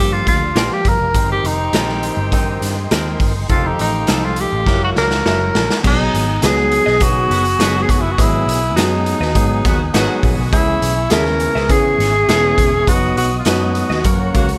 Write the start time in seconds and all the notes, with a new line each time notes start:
Already playing: G2 F3 A#3 D4 G4 A4 D5 F5
0.00 G4
0.12 F4
0.27 D2 F4, kick, snare, closed hi-hat
0.56 A#1 F3 A#3 F4 G4 A#4 D5, snare, closed hi-hat
0.73 G4
0.85 G1 A#4, kick, closed hi-hat
1.00 F1
1.14 G1 D#3 C4 G4 A#4 D#5 G5 C6, kick, closed hi-hat
1.32 G4
1.44 F1 D#4, closed hi-hat
1.73 A#1 D#3 C4 G4 A#4 D#5, snare, closed hi-hat
1.89 snare
2.03 closed hi-hat
2.17 G1
2.32 G2 D#3 C4 D#4, kick, closed hi-hat
2.62 G2, snare, closed hi-hat
2.91 D#2 D#3 C4 G4 A#4 D#5, snare, closed hi-hat
3.19 G1, kick, open hi-hat
3.49 F1 D#3 F3 C4 D#4 F4 G4 A4 F5, kick, closed hi-hat
3.67 D#4
3.79 A1 D#4, closed hi-hat
4.07 C2 F3 D#4 F4 A4 D#5, snare, closed hi-hat
4.25 F4
4.36 closed hi-hat
4.40 G4
4.53 A1
4.65 F#1 C#3 F#3 A#3 E4 F#4 A#4 E5 F#5 C#6, kick, snare
4.84 F#4
4.96 C#2 A#4, snare
5.11 snare
5.25 F#1 F#3 E4 F#4 A#4 E5, snare
5.55 A#1, snare
5.70 snare
5.83 B1 F#3 B3 D#4 G#4 F#5 G#5 D#6, kick, crash
5.87 D#4
6.14 G#1, closed hi-hat
6.42 C#2 F#3 B3 D#4 G#4 B4 D#5, snare, closed hi-hat
6.57 snare
6.72 closed hi-hat
6.86 B1 G#4 B4 D#5, snare
7.00 B2 F#3 B3 D#4 F#4 G#4, kick, closed hi-hat
7.30 F#1 D#3 B3 F#4, closed hi-hat
7.45 closed hi-hat
7.59 F#1 D#3 F#3 B3 D#4 F#4 G#4 B4 D#5, snare, closed hi-hat
7.82 G#4
7.89 F#1 F#4, kick, closed hi-hat
8.01 E4
8.11 F#4
8.18 G#1 F#3 B3 E4 G#4 D#5 G#5, kick, closed hi-hat
8.46 B1, closed hi-hat
8.76 F#2 F#3 B3 D#4 F#4 G#4 B4 D#5, snare, closed hi-hat
9.06 closed hi-hat
9.21 D#2 F#4 B4 D#5, snare
9.35 G#2 F#3 B3 D#4 G#4, kick, closed hi-hat
9.65 D#2 D#3 B3 F#4, kick, snare, closed hi-hat
9.94 G#1 D#3 F#3 B3 D#4 F#4 G#4 B4 D#5, snare, closed hi-hat
10.23 A#1, kick, open hi-hat
10.38 B1
10.52 C#2 E3 B3 C#4 E4 G#4 E5 C#6, kick, closed hi-hat
10.82 B1, closed hi-hat
11.10 D#2 C#3 B3 C#4 E4 G#4 A#4 B4 E5, snare, closed hi-hat
11.26 snare
11.40 closed hi-hat
11.55 C#2 G#4 B4 E5, snare
11.69 C#3 E3 B3 C#4 G#4, kick, closed hi-hat
11.98 G#1 E3 C#4 G#4, snare, closed hi-hat
12.28 E1 E3 B3 C#4 G#4 B4 E5, snare, closed hi-hat
12.58 E1, kick, closed hi-hat
12.86 F#1 F#3 B3 D#4 F#4 B4 D#5 F#5 D#6, kick, closed hi-hat
13.17 B1 F#4, closed hi-hat
13.39 F4
13.45 F#2 F#3 B3 D#4 F#4 B4 D#5, snare, closed hi-hat
13.75 closed hi-hat
13.90 D#2 F#4 B4 D#5, snare
14.04 F#2 F#3 A#3 C#4 A#4 C#5 C#6, kick, closed hi-hat
14.34 C#2 C#3 A#3 F#4, kick, closed hi-hat
14.49 closed hi-hat